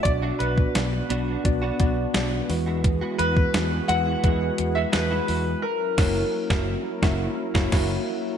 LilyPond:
<<
  \new Staff \with { instrumentName = "Grand piano" } { \time 4/4 \key b \dorian \tempo 4 = 86 d''8 b'2. r8 | r8 b'4 fis''4~ fis''16 e''16 b'4 | ais'2. r4 | }
  \new Staff \with { instrumentName = "Clean electric guitar" } { \time 4/4 \key b \dorian r16 <b d' fis'>16 <b d' fis'>16 r8. <b d' fis'>16 <b d' fis'>16 r16 <b d' fis'>16 <b d' fis'>16 r16 <b d' fis'>16 r8 <gis e' fis'>16 | r16 <gis e' fis'>16 <gis e' fis'>16 r8. <gis e' fis'>16 <gis e' fis'>16 <gis e' fis'>16 r8 <gis e' fis'>16 r16 <gis e' fis'>16 <gis e' fis'>16 r16 | r8 <ais e' fis'>8 r16 <ais e' fis'>8 r16 <ais e' fis'>8 r16 <ais e' fis'>16 <ais e' fis'>8 r8 | }
  \new Staff \with { instrumentName = "Tine electric piano" } { \time 4/4 \key b \dorian <b d' fis' d''>8 <b d' fis' d''>8 <b d' fis' d''>8 <b d' fis' d''>8 <b d' fis' d''>8 <b d' fis' d''>8 <b d' fis' d''>8 <gis e' fis' b'>8~ | <gis e' fis' b'>16 r16 <gis e' fis' b'>8 <gis e' fis' b'>8 <gis e' fis' b'>8 <gis e' fis' b'>8 <gis e' fis' b'>8 <gis e' fis' b'>8 <gis e' fis' b'>8 | r8 <ais e' fis' cis''>8 r16 <ais e' fis'>8 r16 <ais e' fis' e''>8 r16 <ais e' fis' cis''>16 <ais e' fis' cis''>8 r8 | }
  \new Staff \with { instrumentName = "Tine electric piano" } { \clef bass \time 4/4 \key b \dorian b,4. r2 e8~ | e4 r2. | r1 | }
  \new Staff \with { instrumentName = "Analog synth pad" } { \time 4/4 \key b \dorian << { <d' fis'>2.~ <d' fis'>8 <e fis' gis'>8~ | <e fis' gis'>1 | <fis e' ais'>1 | } \\ { b1~ | b1 | cis'1 | } >> }
  \new Staff \with { instrumentName = "Fretless electric bass" } { \clef bass \time 4/4 \key b \dorian b,,8 b,,8 b,,8 b,,8 b,,8 b,,8 b,,8 e,8~ | e,8 e,8 e,8 e,8 e,8 e,8 e,8 e,8 | r8 fis,,8 r16 fis,,8 r16 fis,,8 r16 fis,,16 fis,,8 r8 | }
  \new DrumStaff \with { instrumentName = "Drums" } \drummode { \time 4/4 <hh bd>8 hh16 bd16 <hh sn>8 hh8 <hh bd>8 <hh bd>8 <hh sn>8 hho8 | <hh bd>8 hh16 bd16 <hh sn>8 hh8 <hh bd>8 hh8 <hh sn>8 hho8 | r8 <cymc bd sn>8 r16 <bd sn>8. <bd sn>8. <bd sn>16 <cymc bd sn>4 | }
>>